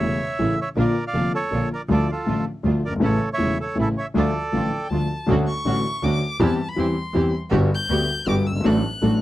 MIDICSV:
0, 0, Header, 1, 6, 480
1, 0, Start_track
1, 0, Key_signature, -1, "minor"
1, 0, Tempo, 375469
1, 977, Time_signature, 3, 2, 24, 8
1, 6747, Key_signature, 2, "major"
1, 11782, End_track
2, 0, Start_track
2, 0, Title_t, "Violin"
2, 0, Program_c, 0, 40
2, 5795, Note_on_c, 0, 79, 73
2, 6264, Note_on_c, 0, 81, 86
2, 6283, Note_off_c, 0, 79, 0
2, 6748, Note_off_c, 0, 81, 0
2, 7001, Note_on_c, 0, 85, 104
2, 7715, Note_on_c, 0, 86, 95
2, 7734, Note_off_c, 0, 85, 0
2, 8197, Note_on_c, 0, 81, 88
2, 8216, Note_off_c, 0, 86, 0
2, 8550, Note_on_c, 0, 83, 89
2, 8569, Note_off_c, 0, 81, 0
2, 8688, Note_on_c, 0, 84, 76
2, 8707, Note_off_c, 0, 83, 0
2, 9390, Note_off_c, 0, 84, 0
2, 9903, Note_on_c, 0, 91, 126
2, 10588, Note_on_c, 0, 86, 94
2, 10607, Note_off_c, 0, 91, 0
2, 10823, Note_on_c, 0, 88, 80
2, 10843, Note_off_c, 0, 86, 0
2, 11070, Note_on_c, 0, 90, 89
2, 11089, Note_off_c, 0, 88, 0
2, 11779, Note_off_c, 0, 90, 0
2, 11782, End_track
3, 0, Start_track
3, 0, Title_t, "Bandoneon"
3, 0, Program_c, 1, 23
3, 0, Note_on_c, 1, 73, 65
3, 0, Note_on_c, 1, 76, 87
3, 703, Note_off_c, 1, 73, 0
3, 764, Note_off_c, 1, 76, 0
3, 784, Note_on_c, 1, 76, 77
3, 787, Note_on_c, 1, 73, 53
3, 881, Note_off_c, 1, 76, 0
3, 884, Note_off_c, 1, 73, 0
3, 1011, Note_on_c, 1, 70, 52
3, 1023, Note_on_c, 1, 74, 69
3, 1332, Note_off_c, 1, 70, 0
3, 1338, Note_off_c, 1, 74, 0
3, 1370, Note_on_c, 1, 77, 85
3, 1375, Note_on_c, 1, 74, 58
3, 1691, Note_off_c, 1, 77, 0
3, 1694, Note_off_c, 1, 74, 0
3, 1718, Note_on_c, 1, 69, 60
3, 1733, Note_on_c, 1, 73, 82
3, 2157, Note_off_c, 1, 69, 0
3, 2165, Note_off_c, 1, 73, 0
3, 2217, Note_on_c, 1, 70, 55
3, 2236, Note_on_c, 1, 74, 66
3, 2317, Note_off_c, 1, 70, 0
3, 2331, Note_off_c, 1, 74, 0
3, 2444, Note_on_c, 1, 69, 52
3, 2474, Note_on_c, 1, 74, 77
3, 2656, Note_off_c, 1, 69, 0
3, 2693, Note_off_c, 1, 74, 0
3, 2694, Note_on_c, 1, 65, 50
3, 2714, Note_on_c, 1, 69, 67
3, 3123, Note_off_c, 1, 65, 0
3, 3134, Note_off_c, 1, 69, 0
3, 3648, Note_on_c, 1, 74, 77
3, 3660, Note_on_c, 1, 70, 58
3, 3749, Note_off_c, 1, 74, 0
3, 3758, Note_off_c, 1, 70, 0
3, 3881, Note_on_c, 1, 69, 65
3, 3888, Note_on_c, 1, 73, 78
3, 4206, Note_off_c, 1, 69, 0
3, 4210, Note_off_c, 1, 73, 0
3, 4258, Note_on_c, 1, 73, 71
3, 4270, Note_on_c, 1, 76, 100
3, 4575, Note_off_c, 1, 73, 0
3, 4582, Note_off_c, 1, 76, 0
3, 4610, Note_on_c, 1, 69, 61
3, 4629, Note_on_c, 1, 73, 76
3, 4819, Note_off_c, 1, 69, 0
3, 4829, Note_off_c, 1, 73, 0
3, 4862, Note_on_c, 1, 64, 57
3, 4873, Note_on_c, 1, 69, 83
3, 4960, Note_off_c, 1, 64, 0
3, 4969, Note_off_c, 1, 69, 0
3, 5082, Note_on_c, 1, 73, 63
3, 5109, Note_on_c, 1, 76, 83
3, 5185, Note_off_c, 1, 73, 0
3, 5206, Note_off_c, 1, 76, 0
3, 5329, Note_on_c, 1, 69, 60
3, 5349, Note_on_c, 1, 74, 79
3, 6228, Note_off_c, 1, 69, 0
3, 6238, Note_off_c, 1, 74, 0
3, 11782, End_track
4, 0, Start_track
4, 0, Title_t, "String section"
4, 0, Program_c, 2, 48
4, 24, Note_on_c, 2, 57, 45
4, 26, Note_on_c, 2, 61, 43
4, 28, Note_on_c, 2, 64, 48
4, 220, Note_off_c, 2, 57, 0
4, 221, Note_off_c, 2, 61, 0
4, 222, Note_off_c, 2, 64, 0
4, 500, Note_on_c, 2, 57, 46
4, 507, Note_on_c, 2, 61, 39
4, 510, Note_on_c, 2, 64, 51
4, 700, Note_off_c, 2, 57, 0
4, 704, Note_off_c, 2, 61, 0
4, 705, Note_off_c, 2, 64, 0
4, 983, Note_on_c, 2, 58, 61
4, 988, Note_on_c, 2, 62, 60
4, 989, Note_on_c, 2, 65, 69
4, 1183, Note_off_c, 2, 58, 0
4, 1185, Note_off_c, 2, 62, 0
4, 1186, Note_off_c, 2, 65, 0
4, 1462, Note_on_c, 2, 58, 41
4, 1463, Note_on_c, 2, 65, 47
4, 1467, Note_on_c, 2, 62, 40
4, 1663, Note_off_c, 2, 58, 0
4, 1663, Note_off_c, 2, 65, 0
4, 1665, Note_off_c, 2, 62, 0
4, 1945, Note_on_c, 2, 58, 44
4, 1947, Note_on_c, 2, 62, 43
4, 1955, Note_on_c, 2, 65, 46
4, 2144, Note_off_c, 2, 58, 0
4, 2145, Note_off_c, 2, 62, 0
4, 2150, Note_off_c, 2, 65, 0
4, 2435, Note_on_c, 2, 57, 62
4, 2440, Note_on_c, 2, 65, 74
4, 2442, Note_on_c, 2, 62, 60
4, 2629, Note_off_c, 2, 57, 0
4, 2632, Note_off_c, 2, 62, 0
4, 2632, Note_off_c, 2, 65, 0
4, 2911, Note_on_c, 2, 57, 45
4, 2914, Note_on_c, 2, 65, 53
4, 2915, Note_on_c, 2, 62, 45
4, 3106, Note_off_c, 2, 57, 0
4, 3107, Note_off_c, 2, 65, 0
4, 3108, Note_off_c, 2, 62, 0
4, 3381, Note_on_c, 2, 57, 49
4, 3381, Note_on_c, 2, 65, 53
4, 3387, Note_on_c, 2, 62, 41
4, 3581, Note_off_c, 2, 57, 0
4, 3581, Note_off_c, 2, 65, 0
4, 3584, Note_off_c, 2, 62, 0
4, 3858, Note_on_c, 2, 57, 66
4, 3863, Note_on_c, 2, 64, 77
4, 3865, Note_on_c, 2, 61, 62
4, 4060, Note_off_c, 2, 57, 0
4, 4063, Note_off_c, 2, 64, 0
4, 4064, Note_off_c, 2, 61, 0
4, 4344, Note_on_c, 2, 57, 47
4, 4351, Note_on_c, 2, 64, 58
4, 4352, Note_on_c, 2, 61, 48
4, 4543, Note_off_c, 2, 57, 0
4, 4547, Note_off_c, 2, 61, 0
4, 4547, Note_off_c, 2, 64, 0
4, 4837, Note_on_c, 2, 57, 50
4, 4839, Note_on_c, 2, 61, 49
4, 4840, Note_on_c, 2, 64, 48
4, 5030, Note_off_c, 2, 57, 0
4, 5031, Note_off_c, 2, 61, 0
4, 5031, Note_off_c, 2, 64, 0
4, 5321, Note_on_c, 2, 57, 67
4, 5325, Note_on_c, 2, 62, 62
4, 5327, Note_on_c, 2, 65, 77
4, 5512, Note_off_c, 2, 57, 0
4, 5514, Note_off_c, 2, 62, 0
4, 5516, Note_off_c, 2, 65, 0
4, 5798, Note_on_c, 2, 62, 44
4, 5801, Note_on_c, 2, 57, 45
4, 5803, Note_on_c, 2, 65, 55
4, 5992, Note_off_c, 2, 62, 0
4, 5993, Note_off_c, 2, 57, 0
4, 5995, Note_off_c, 2, 65, 0
4, 6281, Note_on_c, 2, 57, 47
4, 6285, Note_on_c, 2, 62, 39
4, 6286, Note_on_c, 2, 65, 48
4, 6476, Note_off_c, 2, 57, 0
4, 6478, Note_off_c, 2, 62, 0
4, 6479, Note_off_c, 2, 65, 0
4, 6770, Note_on_c, 2, 61, 74
4, 6771, Note_on_c, 2, 62, 61
4, 6775, Note_on_c, 2, 66, 82
4, 6961, Note_off_c, 2, 61, 0
4, 6962, Note_off_c, 2, 62, 0
4, 6964, Note_off_c, 2, 66, 0
4, 7247, Note_on_c, 2, 61, 53
4, 7253, Note_on_c, 2, 66, 61
4, 7254, Note_on_c, 2, 62, 46
4, 7439, Note_off_c, 2, 61, 0
4, 7442, Note_off_c, 2, 62, 0
4, 7442, Note_off_c, 2, 66, 0
4, 7710, Note_on_c, 2, 61, 53
4, 7717, Note_on_c, 2, 66, 59
4, 7719, Note_on_c, 2, 62, 53
4, 7910, Note_off_c, 2, 61, 0
4, 7913, Note_off_c, 2, 66, 0
4, 7914, Note_off_c, 2, 62, 0
4, 8195, Note_on_c, 2, 60, 74
4, 8196, Note_on_c, 2, 67, 77
4, 8197, Note_on_c, 2, 64, 73
4, 8390, Note_off_c, 2, 60, 0
4, 8391, Note_off_c, 2, 64, 0
4, 8391, Note_off_c, 2, 67, 0
4, 8656, Note_on_c, 2, 60, 55
4, 8664, Note_on_c, 2, 64, 47
4, 8665, Note_on_c, 2, 67, 57
4, 8859, Note_off_c, 2, 60, 0
4, 8863, Note_off_c, 2, 64, 0
4, 8864, Note_off_c, 2, 67, 0
4, 9130, Note_on_c, 2, 60, 55
4, 9133, Note_on_c, 2, 64, 51
4, 9136, Note_on_c, 2, 67, 63
4, 9335, Note_off_c, 2, 60, 0
4, 9336, Note_off_c, 2, 64, 0
4, 9337, Note_off_c, 2, 67, 0
4, 9596, Note_on_c, 2, 59, 74
4, 9596, Note_on_c, 2, 66, 78
4, 9603, Note_on_c, 2, 67, 83
4, 9805, Note_off_c, 2, 66, 0
4, 9806, Note_off_c, 2, 59, 0
4, 9809, Note_off_c, 2, 67, 0
4, 10094, Note_on_c, 2, 59, 61
4, 10095, Note_on_c, 2, 67, 67
4, 10099, Note_on_c, 2, 66, 53
4, 10294, Note_off_c, 2, 59, 0
4, 10294, Note_off_c, 2, 67, 0
4, 10297, Note_off_c, 2, 66, 0
4, 10573, Note_on_c, 2, 59, 58
4, 10578, Note_on_c, 2, 66, 52
4, 10584, Note_on_c, 2, 67, 65
4, 10773, Note_off_c, 2, 59, 0
4, 10775, Note_off_c, 2, 66, 0
4, 10778, Note_off_c, 2, 67, 0
4, 11054, Note_on_c, 2, 62, 77
4, 11062, Note_on_c, 2, 66, 70
4, 11067, Note_on_c, 2, 69, 86
4, 11253, Note_off_c, 2, 62, 0
4, 11257, Note_off_c, 2, 66, 0
4, 11260, Note_off_c, 2, 69, 0
4, 11525, Note_on_c, 2, 62, 58
4, 11530, Note_on_c, 2, 69, 64
4, 11532, Note_on_c, 2, 66, 50
4, 11729, Note_off_c, 2, 62, 0
4, 11731, Note_off_c, 2, 69, 0
4, 11732, Note_off_c, 2, 66, 0
4, 11782, End_track
5, 0, Start_track
5, 0, Title_t, "Grand piano"
5, 0, Program_c, 3, 0
5, 3, Note_on_c, 3, 40, 48
5, 5, Note_on_c, 3, 49, 43
5, 9, Note_on_c, 3, 52, 38
5, 10, Note_on_c, 3, 57, 39
5, 13, Note_on_c, 3, 64, 48
5, 16, Note_on_c, 3, 28, 51
5, 210, Note_off_c, 3, 40, 0
5, 211, Note_off_c, 3, 49, 0
5, 213, Note_off_c, 3, 52, 0
5, 213, Note_off_c, 3, 57, 0
5, 215, Note_off_c, 3, 64, 0
5, 216, Note_off_c, 3, 28, 0
5, 496, Note_on_c, 3, 52, 43
5, 500, Note_on_c, 3, 49, 47
5, 503, Note_on_c, 3, 64, 47
5, 504, Note_on_c, 3, 45, 46
5, 506, Note_on_c, 3, 33, 45
5, 509, Note_on_c, 3, 57, 40
5, 698, Note_off_c, 3, 52, 0
5, 700, Note_off_c, 3, 49, 0
5, 702, Note_off_c, 3, 45, 0
5, 702, Note_off_c, 3, 64, 0
5, 703, Note_off_c, 3, 33, 0
5, 705, Note_off_c, 3, 57, 0
5, 976, Note_on_c, 3, 50, 55
5, 977, Note_on_c, 3, 53, 53
5, 978, Note_on_c, 3, 58, 54
5, 979, Note_on_c, 3, 46, 75
5, 981, Note_on_c, 3, 34, 69
5, 983, Note_on_c, 3, 65, 57
5, 1179, Note_off_c, 3, 50, 0
5, 1180, Note_off_c, 3, 46, 0
5, 1180, Note_off_c, 3, 53, 0
5, 1180, Note_off_c, 3, 58, 0
5, 1182, Note_off_c, 3, 34, 0
5, 1183, Note_off_c, 3, 65, 0
5, 1451, Note_on_c, 3, 50, 44
5, 1454, Note_on_c, 3, 58, 41
5, 1456, Note_on_c, 3, 53, 37
5, 1457, Note_on_c, 3, 41, 47
5, 1458, Note_on_c, 3, 29, 54
5, 1460, Note_on_c, 3, 65, 48
5, 1658, Note_off_c, 3, 50, 0
5, 1659, Note_off_c, 3, 58, 0
5, 1660, Note_off_c, 3, 41, 0
5, 1660, Note_off_c, 3, 53, 0
5, 1661, Note_off_c, 3, 29, 0
5, 1662, Note_off_c, 3, 65, 0
5, 1929, Note_on_c, 3, 58, 42
5, 1932, Note_on_c, 3, 53, 42
5, 1933, Note_on_c, 3, 65, 49
5, 1934, Note_on_c, 3, 50, 43
5, 1935, Note_on_c, 3, 34, 54
5, 1935, Note_on_c, 3, 46, 55
5, 2137, Note_off_c, 3, 58, 0
5, 2138, Note_off_c, 3, 53, 0
5, 2139, Note_off_c, 3, 50, 0
5, 2139, Note_off_c, 3, 65, 0
5, 2140, Note_off_c, 3, 34, 0
5, 2140, Note_off_c, 3, 46, 0
5, 2414, Note_on_c, 3, 50, 68
5, 2418, Note_on_c, 3, 38, 70
5, 2418, Note_on_c, 3, 57, 59
5, 2421, Note_on_c, 3, 53, 55
5, 2421, Note_on_c, 3, 65, 66
5, 2620, Note_off_c, 3, 38, 0
5, 2621, Note_off_c, 3, 57, 0
5, 2622, Note_off_c, 3, 53, 0
5, 2622, Note_off_c, 3, 65, 0
5, 2624, Note_off_c, 3, 50, 0
5, 2889, Note_on_c, 3, 53, 39
5, 2891, Note_on_c, 3, 33, 55
5, 2891, Note_on_c, 3, 45, 51
5, 2897, Note_on_c, 3, 50, 41
5, 2899, Note_on_c, 3, 57, 39
5, 2901, Note_on_c, 3, 65, 51
5, 3095, Note_off_c, 3, 53, 0
5, 3096, Note_off_c, 3, 33, 0
5, 3096, Note_off_c, 3, 45, 0
5, 3099, Note_off_c, 3, 50, 0
5, 3100, Note_off_c, 3, 57, 0
5, 3101, Note_off_c, 3, 65, 0
5, 3361, Note_on_c, 3, 53, 40
5, 3363, Note_on_c, 3, 50, 54
5, 3366, Note_on_c, 3, 38, 52
5, 3367, Note_on_c, 3, 57, 44
5, 3375, Note_on_c, 3, 65, 47
5, 3571, Note_off_c, 3, 53, 0
5, 3573, Note_off_c, 3, 38, 0
5, 3573, Note_off_c, 3, 50, 0
5, 3574, Note_off_c, 3, 57, 0
5, 3578, Note_off_c, 3, 65, 0
5, 3681, Note_on_c, 3, 30, 41
5, 3727, Note_on_c, 3, 31, 49
5, 3739, Note_off_c, 3, 30, 0
5, 3782, Note_on_c, 3, 32, 64
5, 3792, Note_off_c, 3, 31, 0
5, 3830, Note_on_c, 3, 49, 65
5, 3837, Note_on_c, 3, 45, 75
5, 3837, Note_on_c, 3, 52, 59
5, 3839, Note_on_c, 3, 33, 78
5, 3845, Note_on_c, 3, 64, 74
5, 3846, Note_on_c, 3, 57, 60
5, 3850, Note_off_c, 3, 32, 0
5, 4046, Note_off_c, 3, 49, 0
5, 4049, Note_off_c, 3, 45, 0
5, 4050, Note_off_c, 3, 33, 0
5, 4050, Note_off_c, 3, 52, 0
5, 4054, Note_off_c, 3, 57, 0
5, 4054, Note_off_c, 3, 64, 0
5, 4318, Note_on_c, 3, 52, 42
5, 4321, Note_on_c, 3, 40, 53
5, 4322, Note_on_c, 3, 49, 43
5, 4325, Note_on_c, 3, 28, 54
5, 4328, Note_on_c, 3, 57, 44
5, 4333, Note_on_c, 3, 64, 53
5, 4530, Note_off_c, 3, 52, 0
5, 4532, Note_off_c, 3, 40, 0
5, 4532, Note_off_c, 3, 49, 0
5, 4534, Note_off_c, 3, 28, 0
5, 4535, Note_off_c, 3, 57, 0
5, 4538, Note_off_c, 3, 64, 0
5, 4799, Note_on_c, 3, 33, 58
5, 4799, Note_on_c, 3, 49, 46
5, 4803, Note_on_c, 3, 45, 53
5, 4804, Note_on_c, 3, 52, 44
5, 4809, Note_on_c, 3, 57, 45
5, 4812, Note_on_c, 3, 64, 47
5, 5011, Note_off_c, 3, 33, 0
5, 5011, Note_off_c, 3, 49, 0
5, 5013, Note_off_c, 3, 45, 0
5, 5013, Note_off_c, 3, 52, 0
5, 5016, Note_off_c, 3, 57, 0
5, 5017, Note_off_c, 3, 64, 0
5, 5292, Note_on_c, 3, 50, 71
5, 5294, Note_on_c, 3, 57, 64
5, 5298, Note_on_c, 3, 53, 59
5, 5299, Note_on_c, 3, 65, 67
5, 5300, Note_on_c, 3, 38, 79
5, 5499, Note_off_c, 3, 57, 0
5, 5501, Note_off_c, 3, 50, 0
5, 5501, Note_off_c, 3, 53, 0
5, 5501, Note_off_c, 3, 65, 0
5, 5502, Note_off_c, 3, 38, 0
5, 5782, Note_on_c, 3, 50, 43
5, 5783, Note_on_c, 3, 53, 45
5, 5784, Note_on_c, 3, 57, 45
5, 5786, Note_on_c, 3, 33, 49
5, 5788, Note_on_c, 3, 45, 54
5, 5792, Note_on_c, 3, 65, 53
5, 5984, Note_off_c, 3, 50, 0
5, 5985, Note_off_c, 3, 53, 0
5, 5985, Note_off_c, 3, 57, 0
5, 5986, Note_off_c, 3, 33, 0
5, 5987, Note_off_c, 3, 45, 0
5, 5989, Note_off_c, 3, 65, 0
5, 6270, Note_on_c, 3, 50, 52
5, 6273, Note_on_c, 3, 38, 48
5, 6273, Note_on_c, 3, 53, 39
5, 6279, Note_on_c, 3, 57, 41
5, 6279, Note_on_c, 3, 65, 44
5, 6472, Note_off_c, 3, 53, 0
5, 6473, Note_off_c, 3, 38, 0
5, 6473, Note_off_c, 3, 50, 0
5, 6475, Note_off_c, 3, 57, 0
5, 6475, Note_off_c, 3, 65, 0
5, 6730, Note_on_c, 3, 50, 86
5, 6736, Note_on_c, 3, 38, 78
5, 6742, Note_on_c, 3, 57, 55
5, 6744, Note_on_c, 3, 66, 77
5, 6746, Note_on_c, 3, 61, 61
5, 6944, Note_off_c, 3, 38, 0
5, 6944, Note_off_c, 3, 50, 0
5, 6947, Note_off_c, 3, 57, 0
5, 6948, Note_off_c, 3, 66, 0
5, 6949, Note_off_c, 3, 61, 0
5, 7224, Note_on_c, 3, 50, 53
5, 7227, Note_on_c, 3, 45, 62
5, 7227, Note_on_c, 3, 57, 51
5, 7229, Note_on_c, 3, 33, 64
5, 7229, Note_on_c, 3, 61, 47
5, 7235, Note_on_c, 3, 66, 53
5, 7428, Note_off_c, 3, 50, 0
5, 7429, Note_off_c, 3, 45, 0
5, 7429, Note_off_c, 3, 57, 0
5, 7430, Note_off_c, 3, 33, 0
5, 7430, Note_off_c, 3, 61, 0
5, 7433, Note_off_c, 3, 66, 0
5, 7699, Note_on_c, 3, 57, 47
5, 7704, Note_on_c, 3, 50, 60
5, 7708, Note_on_c, 3, 38, 57
5, 7711, Note_on_c, 3, 61, 47
5, 7712, Note_on_c, 3, 66, 51
5, 7904, Note_off_c, 3, 57, 0
5, 7908, Note_off_c, 3, 38, 0
5, 7908, Note_off_c, 3, 50, 0
5, 7910, Note_off_c, 3, 61, 0
5, 7910, Note_off_c, 3, 66, 0
5, 8179, Note_on_c, 3, 52, 88
5, 8181, Note_on_c, 3, 60, 68
5, 8182, Note_on_c, 3, 55, 64
5, 8185, Note_on_c, 3, 40, 80
5, 8185, Note_on_c, 3, 67, 84
5, 8383, Note_off_c, 3, 60, 0
5, 8384, Note_off_c, 3, 52, 0
5, 8384, Note_off_c, 3, 55, 0
5, 8385, Note_off_c, 3, 40, 0
5, 8385, Note_off_c, 3, 67, 0
5, 8647, Note_on_c, 3, 52, 69
5, 8654, Note_on_c, 3, 55, 50
5, 8656, Note_on_c, 3, 60, 48
5, 8657, Note_on_c, 3, 40, 60
5, 8664, Note_on_c, 3, 67, 58
5, 8858, Note_off_c, 3, 55, 0
5, 8859, Note_off_c, 3, 60, 0
5, 8860, Note_off_c, 3, 40, 0
5, 8860, Note_off_c, 3, 52, 0
5, 8863, Note_off_c, 3, 67, 0
5, 9133, Note_on_c, 3, 52, 66
5, 9137, Note_on_c, 3, 55, 48
5, 9139, Note_on_c, 3, 60, 47
5, 9142, Note_on_c, 3, 67, 65
5, 9143, Note_on_c, 3, 40, 59
5, 9338, Note_off_c, 3, 52, 0
5, 9338, Note_off_c, 3, 55, 0
5, 9339, Note_off_c, 3, 60, 0
5, 9341, Note_off_c, 3, 40, 0
5, 9341, Note_off_c, 3, 67, 0
5, 9605, Note_on_c, 3, 55, 72
5, 9608, Note_on_c, 3, 50, 80
5, 9610, Note_on_c, 3, 43, 83
5, 9612, Note_on_c, 3, 59, 64
5, 9614, Note_on_c, 3, 31, 93
5, 9619, Note_on_c, 3, 66, 80
5, 9810, Note_off_c, 3, 55, 0
5, 9812, Note_off_c, 3, 43, 0
5, 9812, Note_off_c, 3, 50, 0
5, 9814, Note_off_c, 3, 59, 0
5, 9815, Note_off_c, 3, 31, 0
5, 9817, Note_off_c, 3, 66, 0
5, 10093, Note_on_c, 3, 50, 65
5, 10094, Note_on_c, 3, 38, 66
5, 10097, Note_on_c, 3, 55, 47
5, 10099, Note_on_c, 3, 66, 64
5, 10100, Note_on_c, 3, 59, 48
5, 10294, Note_off_c, 3, 38, 0
5, 10294, Note_off_c, 3, 50, 0
5, 10295, Note_off_c, 3, 55, 0
5, 10297, Note_off_c, 3, 59, 0
5, 10297, Note_off_c, 3, 66, 0
5, 10563, Note_on_c, 3, 55, 53
5, 10565, Note_on_c, 3, 50, 57
5, 10566, Note_on_c, 3, 43, 68
5, 10567, Note_on_c, 3, 31, 64
5, 10569, Note_on_c, 3, 66, 57
5, 10571, Note_on_c, 3, 59, 48
5, 10768, Note_off_c, 3, 55, 0
5, 10769, Note_off_c, 3, 43, 0
5, 10769, Note_off_c, 3, 50, 0
5, 10770, Note_off_c, 3, 31, 0
5, 10771, Note_off_c, 3, 66, 0
5, 10772, Note_off_c, 3, 59, 0
5, 10873, Note_on_c, 3, 30, 51
5, 10931, Note_off_c, 3, 30, 0
5, 10939, Note_on_c, 3, 31, 58
5, 10994, Note_off_c, 3, 31, 0
5, 10997, Note_on_c, 3, 32, 72
5, 11044, Note_on_c, 3, 54, 70
5, 11049, Note_on_c, 3, 45, 83
5, 11050, Note_on_c, 3, 57, 65
5, 11050, Note_on_c, 3, 62, 61
5, 11052, Note_on_c, 3, 33, 84
5, 11053, Note_off_c, 3, 32, 0
5, 11062, Note_on_c, 3, 69, 77
5, 11248, Note_off_c, 3, 54, 0
5, 11251, Note_off_c, 3, 45, 0
5, 11251, Note_off_c, 3, 57, 0
5, 11251, Note_off_c, 3, 62, 0
5, 11252, Note_off_c, 3, 33, 0
5, 11257, Note_off_c, 3, 69, 0
5, 11529, Note_on_c, 3, 33, 61
5, 11530, Note_on_c, 3, 57, 46
5, 11530, Note_on_c, 3, 62, 48
5, 11530, Note_on_c, 3, 69, 59
5, 11534, Note_on_c, 3, 54, 57
5, 11535, Note_on_c, 3, 45, 66
5, 11731, Note_off_c, 3, 33, 0
5, 11731, Note_off_c, 3, 57, 0
5, 11731, Note_off_c, 3, 62, 0
5, 11731, Note_off_c, 3, 69, 0
5, 11733, Note_off_c, 3, 54, 0
5, 11734, Note_off_c, 3, 45, 0
5, 11782, End_track
6, 0, Start_track
6, 0, Title_t, "Double bass"
6, 0, Program_c, 4, 43
6, 10, Note_on_c, 4, 28, 50
6, 214, Note_off_c, 4, 28, 0
6, 498, Note_on_c, 4, 33, 61
6, 699, Note_off_c, 4, 33, 0
6, 970, Note_on_c, 4, 34, 80
6, 1176, Note_off_c, 4, 34, 0
6, 1460, Note_on_c, 4, 29, 48
6, 1662, Note_off_c, 4, 29, 0
6, 1943, Note_on_c, 4, 34, 55
6, 2143, Note_off_c, 4, 34, 0
6, 2412, Note_on_c, 4, 38, 86
6, 2618, Note_off_c, 4, 38, 0
6, 2902, Note_on_c, 4, 33, 48
6, 3102, Note_off_c, 4, 33, 0
6, 3373, Note_on_c, 4, 38, 63
6, 3577, Note_off_c, 4, 38, 0
6, 3611, Note_on_c, 4, 31, 48
6, 3844, Note_off_c, 4, 31, 0
6, 3851, Note_on_c, 4, 33, 84
6, 4057, Note_off_c, 4, 33, 0
6, 4345, Note_on_c, 4, 28, 48
6, 4543, Note_off_c, 4, 28, 0
6, 4832, Note_on_c, 4, 33, 61
6, 5027, Note_off_c, 4, 33, 0
6, 5316, Note_on_c, 4, 38, 88
6, 5510, Note_off_c, 4, 38, 0
6, 5797, Note_on_c, 4, 33, 50
6, 5992, Note_off_c, 4, 33, 0
6, 6276, Note_on_c, 4, 38, 55
6, 6474, Note_off_c, 4, 38, 0
6, 6756, Note_on_c, 4, 38, 101
6, 6954, Note_off_c, 4, 38, 0
6, 7233, Note_on_c, 4, 33, 54
6, 7432, Note_off_c, 4, 33, 0
6, 7702, Note_on_c, 4, 38, 69
6, 7906, Note_off_c, 4, 38, 0
6, 8178, Note_on_c, 4, 40, 105
6, 8382, Note_off_c, 4, 40, 0
6, 8647, Note_on_c, 4, 40, 59
6, 8855, Note_off_c, 4, 40, 0
6, 9121, Note_on_c, 4, 40, 69
6, 9330, Note_off_c, 4, 40, 0
6, 9605, Note_on_c, 4, 31, 109
6, 9810, Note_off_c, 4, 31, 0
6, 10087, Note_on_c, 4, 38, 68
6, 10290, Note_off_c, 4, 38, 0
6, 10562, Note_on_c, 4, 31, 74
6, 10767, Note_off_c, 4, 31, 0
6, 10811, Note_on_c, 4, 31, 60
6, 11032, Note_off_c, 4, 31, 0
6, 11040, Note_on_c, 4, 33, 109
6, 11246, Note_off_c, 4, 33, 0
6, 11536, Note_on_c, 4, 33, 62
6, 11734, Note_off_c, 4, 33, 0
6, 11782, End_track
0, 0, End_of_file